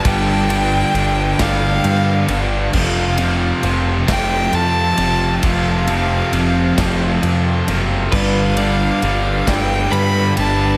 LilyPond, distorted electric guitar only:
\new Staff \with { instrumentName = "Distorted electric guitar" } { \clef bass \time 6/8 \key f \lydian \tempo 4. = 45 <g, d g>8 <g, d g>8 <g, d g>8 <g, d g>4 <g, d g>8 | <f, c f>8 <f, c f>8 <f, c f>8 <f, c f>4 <f, c f>8 | <f, c f>8 <f, c f>8 <f, c f>8 <f, c f>4 <f, c f>8 | <g, d g>8 <g, d g>8 <g, d g>8 <g, d g>4 <g, d g>8 | }